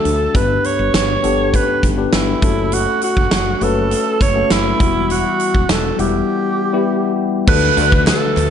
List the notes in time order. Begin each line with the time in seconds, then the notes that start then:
Already playing: A3 D4 F#4 A4
0.05 D2, closed hi-hat
0.34 G1 G2 B3 D4 G4 B4, kick, closed hi-hat
0.64 C#5, closed hi-hat
0.79 G1
0.94 G1 C#5, snare, closed hi-hat
1.23 G1 B3 D4 G4 A4, closed hi-hat
1.54 B4, kick, closed hi-hat
1.83 G1, kick, closed hi-hat
1.97 B3 D4 G4 B4
2.12 G1 E4, snare, closed hi-hat
2.42 F#1 A3 C#4 F#4 A4, kick, closed hi-hat
2.72 F#4, closed hi-hat
3.01 F#4, closed hi-hat
3.17 F#1, kick
3.31 F#1, snare, closed hi-hat
3.61 F#1 A3 C#4 F#4 A4 B4, closed hi-hat
3.91 closed hi-hat
4.21 F#1 C#5, kick, closed hi-hat
4.35 A3 C#4 F#4 A4
4.50 F#1 E4, snare, closed hi-hat
4.79 E1 E3 G3 B3 E4 F#4, kick, closed hi-hat
5.10 F#4, closed hi-hat
5.39 closed hi-hat
5.54 E1, kick
5.69 E1 A4, snare, closed hi-hat
5.98 E1 G3 B3 E4 G4 F#5, closed hi-hat
6.73 G3 B3 E4 G4
7.47 D2 D3 A3 D4 F#4 A4 B4, kick, crash
7.76 D2 A3 D4 F#4 B4, closed hi-hat
7.92 kick
8.07 A4, snare, clap, closed hi-hat, tambourine
8.36 D2, clap, closed hi-hat